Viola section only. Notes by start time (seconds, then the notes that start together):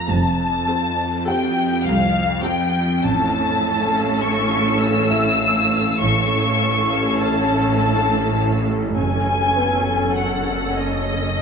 0.69 C4 A4
1.28 C4 A4
2.44 C4 A4
3.04 C#4 A4
6.00 C#4 A4
8.96 C#4 A4